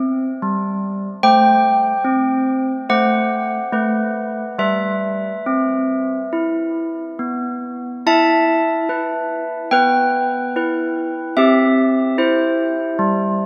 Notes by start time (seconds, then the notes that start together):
Already playing: C4 C5 E5
0.42 G3
1.23 A3 C5 G5
2.05 C4
2.89 A3 C5 F#5
3.72 A3 B4
4.59 G3 B4 E5
5.46 C4
6.33 E4
7.19 B3
8.07 E4 E5 A5
8.89 E4 B4
9.71 B3 B4 G5
10.56 E4 B4
11.37 C4 G4 E5
12.18 E4 C5
12.99 G3